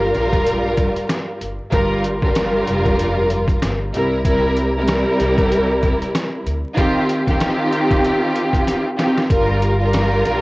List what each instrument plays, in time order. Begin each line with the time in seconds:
Already playing: upright bass G1, string section G2 G3 F4 A#4
0.15 upright bass A#1, snare, closed hi-hat
0.33 kick, closed hi-hat
0.47 closed hi-hat
0.77 kick, closed hi-hat
0.96 closed hi-hat
1.09 snare, closed hi-hat
1.41 upright bass G1, closed hi-hat
1.70 upright bass G1, string section G2 G3 F4 A#4, kick, closed hi-hat
2.04 closed hi-hat
2.22 string section G2 G3 F4 A#4, kick
2.35 snare, closed hi-hat
2.67 upright bass F1, closed hi-hat
2.85 kick, closed hi-hat
2.99 closed hi-hat
3.30 closed hi-hat
3.48 kick, closed hi-hat
3.62 upright bass G1, snare, closed hi-hat
3.93 upright bass C2, string section C3 G3 E4 A#4, closed hi-hat
4.24 string section C3 G3 E4 A#4, kick, closed hi-hat
4.57 closed hi-hat
4.77 string section C3 G3 E4 A#4
4.88 snare, closed hi-hat
5.20 upright bass C2, snare, closed hi-hat
5.38 kick, closed hi-hat
5.52 closed hi-hat
5.83 kick, closed hi-hat
6.02 closed hi-hat
6.15 snare, closed hi-hat
6.46 upright bass D2, closed hi-hat
6.76 string section D#3 C4 F4 G4, kick, closed hi-hat
7.09 closed hi-hat
7.27 string section D#3 C4 F4 G4, kick, snare, closed hi-hat
7.40 snare, closed hi-hat
7.73 closed hi-hat
7.91 kick, closed hi-hat
8.05 closed hi-hat
8.36 closed hi-hat
8.53 kick, closed hi-hat
8.67 snare, closed hi-hat
8.98 string section D#3 C4 F4 G4, snare, closed hi-hat
9.18 snare
9.30 upright bass G1, string section G2 G3 F4 A#4, kick, closed hi-hat
9.62 closed hi-hat
9.81 string section G2 G3 F4 A#4
9.93 snare, closed hi-hat
10.25 upright bass A#1, snare, closed hi-hat